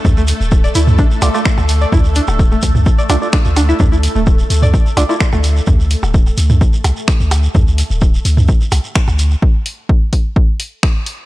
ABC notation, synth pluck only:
X:1
M:4/4
L:1/16
Q:1/4=128
K:C
V:1 name="Synth pluck"
z A, z3 d E z D z2 A, z3 d | E z D z2 A, z3 d D z D z D E | D E z A, z3 d z2 D E z A, z2 | z16 |
z16 | z16 |]